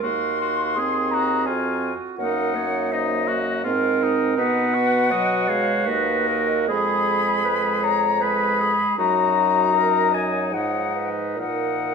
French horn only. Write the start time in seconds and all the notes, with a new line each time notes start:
0.03 A#3
0.78 C4
2.19 A#3
2.57 A#3
3.65 C4
4.39 B3
5.11 F#3
5.48 G#3
5.87 A#3
6.69 G#3
7.46 G#3
8.23 G#3
8.98 F#3
10.53 F3
11.40 F3